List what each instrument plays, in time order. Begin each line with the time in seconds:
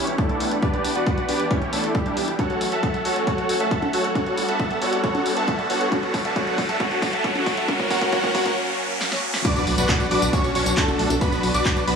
Already playing: analog synth pad E3 B3 D4 G4 F#5, supersaw synth C#4 E4 G4 C#5
0.07 analog synth bass E1, closed hi-hat
0.18 supersaw synth A3 D4 E4 A4, kick, closed hi-hat
0.29 analog synth bass E2, closed hi-hat
0.40 analog synth bass E1, open hi-hat
0.51 analog synth bass E1, closed hi-hat
0.62 supersaw synth D4 G4 B4 D5, kick, closed hi-hat
0.74 analog synth bass E1, closed hi-hat
0.84 analog synth bass E1, open hi-hat
0.96 analog synth bass E1, supersaw synth F#4 B4 D5 F#5, closed hi-hat
1.07 kick, closed hi-hat
1.18 analog synth bass E1, closed hi-hat
1.29 analog synth bass E1, supersaw synth D4 G4 B4 D5, open hi-hat
1.40 analog synth bass E1, closed hi-hat
1.51 supersaw synth C#4 E4 G4 C#5, kick, closed hi-hat
1.62 analog synth bass E1, closed hi-hat
1.73 analog synth bass E1, supersaw synth A3 D4 E4 A4, open hi-hat
1.84 analog synth bass D1, closed hi-hat
1.95 supersaw synth G3 D4 E4 G4, kick, closed hi-hat
2.06 analog synth bass E1, closed hi-hat
2.17 analog synth bass E1, open hi-hat
2.28 analog synth bass E1, closed hi-hat
2.39 analog synth pad F#3 A3 C#4, supersaw synth F#4 A4 C#5 F#5, kick, closed hi-hat, riser, high conga
2.50 analog synth bass A1, closed hi-hat
2.61 analog synth bass A1, open hi-hat
2.72 analog synth bass A1, supersaw synth A4 E5 F#5 A5, closed hi-hat
2.83 kick, closed hi-hat
2.94 analog synth bass A1, closed hi-hat
3.05 analog synth bass A1, supersaw synth F#4 A4 C#5 F#5, open hi-hat
3.16 analog synth bass A1, closed hi-hat
3.27 supersaw synth F#4 A4 C#5 F#5, kick, closed hi-hat
3.38 analog synth bass A1, closed hi-hat
3.49 analog synth bass A1, open hi-hat
3.60 analog synth bass A1, supersaw synth A4 E5 F#5 A5, closed hi-hat
3.71 kick, closed hi-hat
3.82 analog synth bass A2, closed hi-hat, high conga
3.93 analog synth bass A1, supersaw synth F#4 A4 C#5 F#5, open hi-hat
4.04 analog synth bass A1, closed hi-hat
4.15 analog synth pad G3 B3 D4, supersaw synth F#4 A4 C#5 F#5, kick, closed hi-hat, high conga
4.26 analog synth bass G1, closed hi-hat
4.37 analog synth bass G1, open hi-hat
4.48 analog synth bass G1, supersaw synth A4 E5 F#5 A5, closed hi-hat
4.60 kick, closed hi-hat
4.71 analog synth bass G1, closed hi-hat
4.82 analog synth bass G1, supersaw synth F#4 A4 C#5 F#5, open hi-hat
4.93 analog synth bass G1, closed hi-hat
5.04 supersaw synth F#4 A4 C#5 F#5, kick, closed hi-hat
5.15 analog synth bass G1, closed hi-hat, high conga
5.26 analog synth bass G1, open hi-hat
5.37 analog synth bass G1, supersaw synth A4 E5 F#5 A5, closed hi-hat
5.48 kick, closed hi-hat
5.59 analog synth bass G2, closed hi-hat
5.70 analog synth bass G1, supersaw synth F#4 A4 C#5 F#5, open hi-hat
5.81 analog synth bass G1, closed hi-hat
5.92 analog synth pad F#3 D4, supersaw synth F#4 A4 C#5 F#5, kick, closed hi-hat, high conga
6.03 analog synth bass B1, closed hi-hat
6.14 analog synth bass B1, kick, open hi-hat
6.25 analog synth bass B1, supersaw synth A4 E5 F#5 A5, closed hi-hat
6.36 supersaw synth F#4 A4 C#5 F#5, kick, closed hi-hat
6.47 analog synth bass B1, closed hi-hat
6.58 analog synth bass B1, kick, open hi-hat
6.69 analog synth bass B1, supersaw synth A4 E5 F#5 A5, closed hi-hat
6.80 supersaw synth F#4 A4 C#5 F#5, kick, closed hi-hat
6.91 analog synth bass B1, closed hi-hat
7.02 analog synth bass B1, kick, open hi-hat
7.13 analog synth bass B1, supersaw synth A4 E5 F#5 A5, closed hi-hat
7.24 supersaw synth F#4 A4 C#5 F#5, kick, closed hi-hat
7.35 analog synth bass F#1, closed hi-hat, high conga
7.46 analog synth bass B1, kick, open hi-hat
7.57 analog synth bass B1, supersaw synth A4 E5 F#5 A5, closed hi-hat
7.68 analog synth pad A#3 C#4, supersaw synth F#4 A#4 C#5 F#5, kick, closed hi-hat, high conga
7.79 analog synth bass F#1, kick, closed hi-hat
7.90 analog synth bass F#1, supersaw synth F#4 A#4 C#5 F#5, kick, open hi-hat
8.02 analog synth bass F#1, kick, closed hi-hat
8.12 supersaw synth F#4 A#4 C#5 F#5, kick, closed hi-hat
8.24 analog synth bass F#1, kick, closed hi-hat
8.35 analog synth bass F#1, supersaw synth F#4 A#4 C#5 F#5, kick, open hi-hat
8.46 analog synth bass F#1, kick, closed hi-hat
9.01 snare
9.12 snare
9.34 snare
9.45 analog synth pad F#3 B3 D4, supersaw synth D4 F#4 B4 D5 D6, kick, closed hi-hat, tambourine, crash, impact, high conga
9.56 analog synth bass B1, closed hi-hat, tambourine
9.67 analog synth bass B1, open hi-hat
9.78 analog synth bass B1, supersaw synth F#4 B4 D5 F#5 F#6, closed hi-hat, tambourine
9.89 kick, clap, closed hi-hat, tambourine
10.00 analog synth bass B1, closed hi-hat, tambourine
10.11 analog synth bass B1, supersaw synth D4 F#4 B4 D5 D6, open hi-hat
10.22 analog synth bass B1, closed hi-hat, tambourine
10.33 supersaw synth C#4 D4 F#4 C#5 C#6, kick, closed hi-hat, tambourine
10.44 analog synth bass B1, closed hi-hat, tambourine
10.55 analog synth bass B1, supersaw synth C#4 D4 F#4 C#5 C#6, open hi-hat
10.66 analog synth bass B1, closed hi-hat, tambourine
10.77 supersaw synth A3 D4 F#4 A4 A5, kick, clap, closed hi-hat, tambourine
10.88 analog synth bass F#1, closed hi-hat, tambourine, high conga
10.99 analog synth bass B1, open hi-hat
11.10 analog synth bass B1, closed hi-hat, tambourine, high conga
11.21 supersaw synth B3 D4 F#4 B4 B5, kick, closed hi-hat, tambourine, high conga
11.32 analog synth bass B1, closed hi-hat, tambourine
11.43 analog synth bass B1, open hi-hat
11.54 analog synth bass B1, supersaw synth D4 F#4 B4 D5 D6, closed hi-hat, tambourine
11.65 kick, clap, closed hi-hat, tambourine
11.76 analog synth bass B1, closed hi-hat, tambourine
11.87 analog synth bass B1, supersaw synth B3 D4 F#4 B4 B5, open hi-hat